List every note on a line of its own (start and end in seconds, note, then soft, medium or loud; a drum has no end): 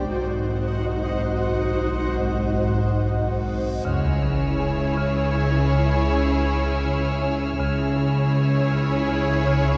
0.10 3.61 G#1 soft
0.10 3.81 B1 medium
0.10 3.61 G#2 soft
0.10 3.61 D#4 soft
0.10 3.61 F#4 soft
0.10 3.81 C5 soft
0.10 3.62 C5 soft
0.10 3.85 D#5 soft
0.10 3.85 F#5 soft
0.10 reverse cymbal soft
3.84 7.56 C#2 medium
3.84 7.56 C#2 soft
3.84 7.56 C#3 soft
3.84 4.08 C#3 soft
3.84 7.56 E4 soft
3.84 7.56 G#4 soft
3.84 7.56 C#5 soft
3.84 7.56 G#5 soft
3.84 9.77 E6 soft
3.84 9.77 F6 soft
3.84 sub drop soft
4.22 4.45 C#3 soft
4.59 4.82 C#3 soft
4.59 8.50 G#4 soft
4.59 8.49 G#5 soft
4.97 5.20 C#3 soft
5.35 5.57 C#3 soft
5.72 5.95 C#3 soft
6.10 6.32 C#4 soft
6.47 6.70 C#3 soft
6.84 7.07 C#3 soft
7.22 7.44 C#4 soft
7.59 9.77 C#2 medium
7.59 9.77 C#2 soft
7.59 7.82 C#3 soft
7.59 9.77 C#3 soft
7.59 9.77 E4 soft
7.59 9.77 G#4 soft
7.59 9.77 C#5 soft
7.59 9.77 G#5 soft
7.96 8.19 C#3 soft
8.35 8.57 C#3 soft
8.71 8.94 C#3 soft
9.09 9.32 C#3 soft
9.47 9.70 C#3 soft